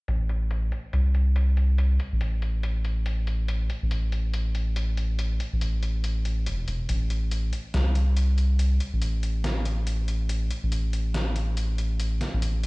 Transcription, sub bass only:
0.08 A1
0.93 C2
2.12 A1
3.82 A1
5.53 A1
6.46 E1
6.68 E1
6.89 A1
7.74 C2
8.93 A1
10.63 A1
12.34 A1

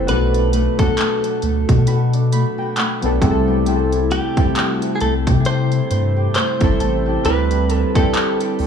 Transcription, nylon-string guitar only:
Already playing: A3 C4 B4
0.08 B2 F#4
0.34 D4
0.53 A3
0.79 F#4
0.98 A3
1.24 D4
1.42 A3
1.69 F#4
1.87 B2 F#4
2.13 D4
2.32 A3
2.58 F#4
2.77 A3
3.03 D4
3.22 C3
3.48 G4
3.66 C3 G4
3.92 E4
4.11 A3
4.37 G4
4.56 A3
4.82 E4
5.01 A3
5.27 G4
5.46 C3 G4
5.72 E4
5.91 A3
6.16 G4
6.35 A3
6.61 E4
6.80 A3
7.06 G4
7.25 D3 B4
7.51 G4
7.69 C4
7.96 B4
8.14 C4
8.40 G4
8.59 C4

